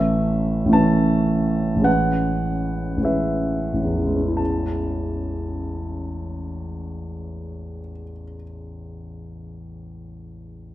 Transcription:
Already playing: A1 E3 A3 C#4 B4 E5
0.65 A1 E3 A3
0.71 C#4 B4 A5
1.76 A1 E3 G#3
1.81 C#4 B4 F#5
2.97 A1 E3 G#3
3.03 C#4 B4 E5
3.74 A1
3.84 E2
3.95 E3
4.05 G#3
4.16 C#4
4.27 E4
4.37 A5

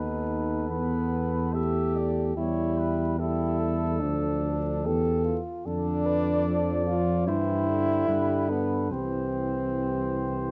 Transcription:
Already playing: D#2 B3 D#4 A4 B4
0.70 E2 B3 B4
1.53 A3 G4 E5
1.97 D5
2.35 E2 G3 E4 G4 C#5
2.78 B4
3.18 G3 E4 G4 A4
3.59 A4
4.01 D2 F3 D4 A4
4.85 E2 E3 G4 A4
5.24 F4
5.66 F2 D3 D4 A4 D5
6.06 B4
6.46 F3 A4
6.87 F4
7.27 G2 E3 E4 G4 C5
7.68 D3
8.08 G2 G4 B4
8.49 B3 A4
8.92 C2 E3 C4 G4 C5

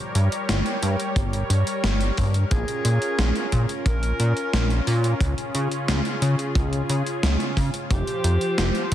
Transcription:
Already playing: G3 G4 A#4 C#5
0.15 G2, closed hi-hat
0.32 closed hi-hat
0.49 G1, snare, closed hi-hat
0.66 closed hi-hat
0.82 G2, closed hi-hat
1.00 closed hi-hat
1.16 G1, kick, closed hi-hat
1.33 closed hi-hat
1.50 G2, closed hi-hat
1.67 closed hi-hat
1.84 G1, snare, closed hi-hat
2.01 closed hi-hat
2.17 G2, kick, open hi-hat
2.34 closed hi-hat
2.51 A#1 C#4 F4 G#4, kick, closed hi-hat
2.68 closed hi-hat
2.85 A#2, closed hi-hat
3.02 closed hi-hat
3.18 A#1, snare, closed hi-hat
3.36 closed hi-hat
3.52 A#2, kick, closed hi-hat
3.69 closed hi-hat
3.86 A#1 A#4, kick, closed hi-hat
4.03 closed hi-hat
4.20 A#2, closed hi-hat
4.37 closed hi-hat
4.53 A#1, snare, closed hi-hat
4.70 closed hi-hat
4.87 A#2, open hi-hat
5.04 closed hi-hat
5.21 C#2 C#3 G#4, kick, closed hi-hat
5.38 closed hi-hat
5.55 C#3, closed hi-hat
5.72 closed hi-hat
5.88 C#2, snare, closed hi-hat
6.05 closed hi-hat
6.22 C#3, closed hi-hat
6.39 closed hi-hat
6.55 C#2, kick, closed hi-hat
6.73 closed hi-hat
6.89 C#3, closed hi-hat
7.07 closed hi-hat
7.23 C#2, snare, closed hi-hat
7.40 closed hi-hat
7.57 C#3, kick, open hi-hat
7.74 closed hi-hat
7.90 F1 F3 G4 C5, kick, closed hi-hat
8.07 closed hi-hat
8.24 F2, closed hi-hat
8.41 closed hi-hat
8.58 F1, snare, closed hi-hat
8.75 closed hi-hat

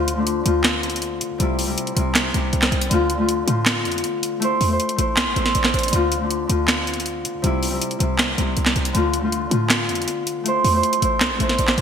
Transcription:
Already playing: D2 D3 A3 F4 C5 D5
0.08 closed hi-hat
0.15 D3 A3
0.19 D4
0.27 closed hi-hat
0.43 D2 D3 A3, closed hi-hat
0.48 F4
0.64 snare, clap, closed hi-hat
0.83 closed hi-hat
0.90 closed hi-hat
0.96 closed hi-hat
1.02 closed hi-hat
1.21 D3, closed hi-hat
1.31 D2
1.38 C2 C3 G3, closed hi-hat
1.42 E4
1.59 open hi-hat
1.66 C3 G3
1.70 E4
1.78 closed hi-hat
1.87 closed hi-hat
1.95 C2 C3 G3, closed hi-hat
1.99 E4
2.15 snare, clap, closed hi-hat
2.32 C2 C3 G3, closed hi-hat
2.36 E4
2.53 C2, closed hi-hat
2.62 snare, clap
2.72 C2, closed hi-hat
2.82 closed hi-hat
2.89 D2 D3 A3, closed hi-hat
2.93 F4
3.10 closed hi-hat
3.17 D3 A3
3.21 F4
3.29 closed hi-hat
3.46 A2 D3 A3, closed hi-hat
3.50 F4
3.66 snare, clap, closed hi-hat
3.85 F2, closed hi-hat
3.92 closed hi-hat
3.98 closed hi-hat
4.04 closed hi-hat
4.23 closed hi-hat
4.40 A3 E4, closed hi-hat
4.44 C5
4.61 E2, open hi-hat
4.68 A3 E4
4.73 C5
4.80 closed hi-hat
4.89 closed hi-hat
4.96 A1 A3 E4, closed hi-hat
5.00 C5
5.17 C2, snare, clap, closed hi-hat
5.27 A1
5.34 A1 A3 E4 E5, closed hi-hat
5.38 C5
5.46 snare
5.55 A1 D5, closed hi-hat
5.64 snare, clap
5.74 A1 C5, closed hi-hat
5.79 closed hi-hat
5.83 closed hi-hat
5.88 D3, closed hi-hat
5.93 D2 A3 F4, closed hi-hat
6.12 closed hi-hat
6.19 D3 A3
6.23 D4
6.31 closed hi-hat
6.47 D2 D3 A3, closed hi-hat
6.51 F4
6.68 snare, clap, closed hi-hat
6.87 closed hi-hat
6.94 closed hi-hat
7.00 closed hi-hat
7.06 closed hi-hat
7.25 D3, closed hi-hat
7.34 D2
7.42 C2 C3 G3, closed hi-hat
7.46 E4
7.63 open hi-hat
7.70 C3 G3
7.74 E4
7.82 closed hi-hat
7.91 closed hi-hat
7.99 C2 C3 G3, closed hi-hat
8.03 E4
8.19 snare, clap, closed hi-hat
8.36 C2 C3 G3, closed hi-hat
8.40 E4
8.57 C2, closed hi-hat
8.66 snare, clap
8.76 C2, closed hi-hat
8.85 closed hi-hat
8.93 D2 D3 A3, closed hi-hat
8.97 F4
9.14 closed hi-hat
9.21 D3 A3
9.25 F4
9.32 closed hi-hat
9.49 A2 D3 A3, closed hi-hat
9.53 F4
9.70 snare, clap, closed hi-hat
9.89 F2, closed hi-hat
9.95 closed hi-hat
10.02 closed hi-hat
10.08 closed hi-hat
10.27 closed hi-hat
10.44 A3 E4, closed hi-hat
10.48 C5
10.64 E2, open hi-hat
10.72 A3 E4
10.76 C5
10.83 closed hi-hat
10.93 closed hi-hat
11.00 A1 A3 E4, closed hi-hat
11.04 C5
11.21 C2, snare, clap, closed hi-hat
11.31 A1
11.38 A1 A3 E4 E5, closed hi-hat
11.42 C5
11.49 snare
11.59 A1 D5, closed hi-hat
11.68 snare, clap
11.78 D2 C5, closed hi-hat

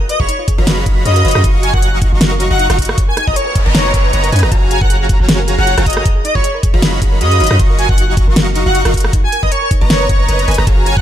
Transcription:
0.01 A#4
0.09 B4 D#5, closed hi-hat
0.20 F#1 F#4 G#4 C#5 D#5 F5 A#5 B5, kick
0.29 D#4, closed hi-hat
0.39 F4
0.48 G#4, kick, closed hi-hat
0.58 F#1 F#4 A#4 C#5 D#5 F5 A#5 B5
0.67 B4, snare, closed hi-hat
0.77 G#4
0.86 F#1 D#4 C#5 D#5 A#5 B5, kick, closed hi-hat
0.97 F4
1.05 F#2 F#4 G#4 C#5 D#5 F5 A#5 B5, closed hi-hat
1.16 A#4, closed hi-hat
1.25 F#1 F#4 B4 C#5 D#5 F5 A#5 B5, closed hi-hat
1.28 closed hi-hat
1.31 G#4, closed hi-hat
1.35 F#2 F#4 C#5 D#5 F5 A#5 B5, cross-stick
1.44 F#1 D#4 D#5 F5 A#5 C#6, kick, closed hi-hat
1.54 F4
1.63 F#4 G#5, closed hi-hat
1.74 F#1 F#4 A#4 D#5 F5 F#5 C#6, kick
1.82 C#5, closed hi-hat
1.93 F#4
2.02 D#4, kick, closed hi-hat
2.12 F#1 F4 F#4 D#5 F5 A#5 C#6
2.21 F#4, snare, closed hi-hat
2.31 A#4
2.40 C#5, closed hi-hat
2.50 F#1 F#4 D#5 F5 F#5 A#5 C#6
2.59 D#4, closed hi-hat
2.70 F#1 F4 F#4 D#5 F5 A#5 C#6, cross-stick, closed hi-hat
2.79 kick, closed hi-hat
2.82 closed hi-hat
2.85 closed hi-hat
2.89 A#4, cross-stick
2.98 C#5, kick, closed hi-hat, noise sweep
3.08 A#4 G#5
3.17 D#4 G#5, cross-stick, closed hi-hat
3.27 F#1 F#4 B4 D#5 A#5, kick
3.36 A#4 C#5, closed hi-hat
3.47 B4 C#5
3.55 C#5, kick, closed hi-hat
3.66 F#1 A#4 B4 D#5 A#5
3.75 D#4 C#5, snare, closed hi-hat
3.85 F#4
3.94 F#1 A#4 B4 D#5 A#5, kick, closed hi-hat
4.04 B4
4.13 F#1 B4 C#5 D#5 A#5, closed hi-hat
4.24 A#4, closed hi-hat
4.32 F#2 D#4 B4 D#5 G#5, closed hi-hat
4.36 closed hi-hat
4.39 F#4 B4 D#5 A#5, closed hi-hat
4.43 F#1 A#5, cross-stick
4.52 F#1 F4 F#4 C#5 F5 G#5 A#5, kick, closed hi-hat
4.62 F#4
4.71 G#4 G#5, closed hi-hat
4.81 F#1 A#4 C#5 F5 F#5 A#5, kick
4.90 G#4, closed hi-hat
5.01 G#4
5.09 F4, kick, closed hi-hat
5.20 F#1 F#4 C#5 F5 G#5 A#5
5.29 G#4, snare, closed hi-hat
5.39 A#4
5.48 G#4, closed hi-hat
5.58 F#1 F#4 G#4 C#5 F5 F#5 G#5 A#5
5.67 F4, closed hi-hat
5.77 F#1 F#4 C#5 F5 G#5 A#5, cross-stick, closed hi-hat
5.86 G#4 D#5, kick, closed hi-hat
5.90 closed hi-hat
5.93 A#4, closed hi-hat
5.97 D#5, cross-stick
6.05 G#4, kick, closed hi-hat
6.16 G#4
6.25 D#4 D#5, closed hi-hat
6.35 F#1 F4 F#4 C#5 D#5 F5 A#5 B5, kick
6.44 G#4, closed hi-hat
6.54 A#4
6.63 G#4, kick, closed hi-hat
6.74 F#1 F#4 G#4 C#5 D#5 F5 A#5 B5
6.82 D#4, snare, closed hi-hat
6.93 F4
7.02 F#1 F#4 G#4 B5, kick, closed hi-hat
7.12 A#4
7.21 F#2 F#4 G#4 C#5 D#5 F5 A#5 B5, closed hi-hat
7.31 G#4, closed hi-hat
7.40 F#1 D#4 F#4 C#5 D#5 F5 A#5 B5, closed hi-hat
7.44 closed hi-hat
7.47 closed hi-hat
7.51 F#2 F4 F#4 C#5 D#5 F5 A#5 B5, cross-stick
7.59 F#1 F#4 D#5 F5 A#5 C#6, kick, closed hi-hat
7.70 A#4
7.79 F#4 G#5, closed hi-hat
7.89 F#1 F#4 D#5 F5 F#5 A#5 C#6, kick
7.98 D#4, closed hi-hat
8.08 F4
8.17 F#4, kick, closed hi-hat
8.27 F#1 F#4 A#4 D#5 F5 A#5 C#6
8.36 F#4, snare, closed hi-hat
8.47 F#4
8.55 D#4, closed hi-hat
8.66 F#1 F4 F#4 D#5 F5 F#5 A#5 C#6
8.75 F#4, closed hi-hat
8.85 F#1 F#4 A#4 D#5 F5 A#5 C#6, cross-stick, closed hi-hat
8.94 F#4, kick, closed hi-hat
8.97 closed hi-hat
9.00 closed hi-hat
9.04 F#4, cross-stick
9.13 D#4, kick, closed hi-hat
9.24 F#4 G#5
9.32 A#4 G#5, closed hi-hat
9.43 F#1 B4 D#5 A#5, kick
9.52 A#4 C#5, closed hi-hat
9.62 A#4 C#5
9.71 D#4, kick, closed hi-hat
9.81 F#1 F#4 B4 D#5 A#5
9.90 A#4 C#5, snare, closed hi-hat
10.01 B4
10.09 F#1 F#5 A#5, kick, closed hi-hat
10.20 B4
10.28 F#1 A#4 B4 D#5 A#5, closed hi-hat
10.39 C#5, closed hi-hat
10.48 F#1 A#4 B4 D#5 G#5, closed hi-hat
10.51 closed hi-hat
10.54 closed hi-hat
10.58 F#1 B4 C#5 D#5 A#5, cross-stick
10.67 F#1 F#4 G#4 C#5 G#5 A#5, kick, closed hi-hat
10.78 G#4
10.86 F4 G#5, closed hi-hat
10.97 F#1 F#4 F#5, kick

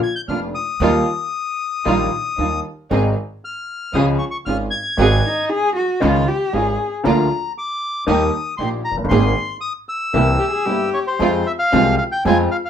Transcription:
0.03 G#6
0.16 G6
0.28 F1 F2 A#3 D4 F4 F6
0.55 D#6
0.80 D#2 D#3 G3 A#3 D#4 F4
1.85 A#1 A#2 D#3 G3 A#3 D#4 F4
2.38 D#2 D#3 G3 D#4 F4
2.91 G#1 G#2 D#3 G#3 C4 D#4 G#4
3.45 F6
3.93 C#2 C#3 F3 G#3 C#4 F4 G#4 D#6
4.19 C#6
4.31 C#6
4.46 G#1 G#2 C#4 F4 G#4 F6
4.71 G#6
4.97 G#1 G#2 D#3 G#3 C4 F#4 G#4
5.24 D#4
5.50 G#4
5.76 F#4
6.00 C#2 C#3 D#3 G#3 C#4 D#4 F4
6.28 G4
6.53 G#1 G#2 C#4 D#4 F4 G#4
7.04 D2 D3 F3 A#3 D4 F4 A#5
7.58 D6
8.07 D#2 D#3 G3 A#3 D#4 G4 D#6
8.58 A#1 A#2 A#3 D#4 G4 C6
8.85 A#5
8.91 F1
8.97 F#1
9.04 G1
9.09 G#1 G#2 D#3 A#3 C4 G#4 C6
9.61 D#6
9.89 E6
10.13 C2 C3 E3 A#3 C4 E4 G4
10.39 G4
10.51 G#4
10.66 G1 G2 A#3 C4 E4 G4
10.94 C#5
11.07 C5
11.19 F2 F3 G#3 C4 F4 G#4
11.46 E5
11.59 F5
11.72 C2 C3 F3 G#3 C4 F4 G#4
11.98 F5
12.12 G5
12.25 F2 F3 G#3 C4 F4 G#4 G#5
12.51 F5
12.65 F5

